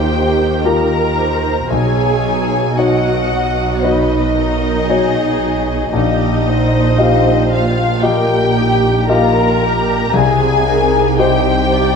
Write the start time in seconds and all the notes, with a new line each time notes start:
Already playing: D#2 D#3 A#3 F4 G4 A#4 C5 G5
0.12 F4
0.64 F4 G4 A#4 A#5
1.18 G4 C5
1.70 B1 B2 G#4 C#5 G#5
2.27 D#4
2.78 D#4 F#4 C#5 D#5 F#5
3.31 F#4
3.84 F#3 D#4 F#4 B4 C#5 D#5
4.36 D#4 A#4
4.88 D#4 F#4 G#4 C#5
5.43 F#4
5.93 A#1 A#2 D#4 G4 D#5
6.47 D#4 C5
6.98 F4 G4 D#5 F5
7.53 F4 F5
8.02 F3 F4 G4 A#4 D#5 G5
8.57 D#4 G4
9.09 F4 G4 A#4 D#5 F5 A#5
9.62 G4
10.13 C2 C3 G#4 G#5
10.68 D#4 A#4
11.19 D#4 G4 C5 G5
11.73 G4 D5